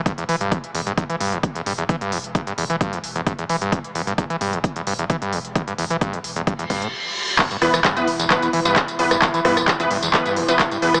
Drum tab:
CC |----------------|----------------|----------------|----------------|
HH |xxoxxxoxxxoxxxox|xxoxxxoxxxoxxxox|xxoxxxoxxxoxxxox|xxoxxxoxxxox----|
TB |----------------|----------------|----------------|----------------|
CP |----------------|----------------|----------------|----------------|
SD |----------------|----------------|----------------|----------------|
BD |o---o---o---o---|o---o---o---o---|o---o---o---o---|o---o---o-o-----|

CC |x---------------|----------------|
HH |xxoxxxoxxxoxxxox|xxoxxxoxxxoxxxox|
TB |xx-xxx-xxx-xxx-x|xx-xxx-xxx-xxx-x|
CP |x---x---x---x---|x---x---x---x---|
SD |--rr-----------r|--rr-----------r|
BD |o---o---o---o---|o---o---o---o---|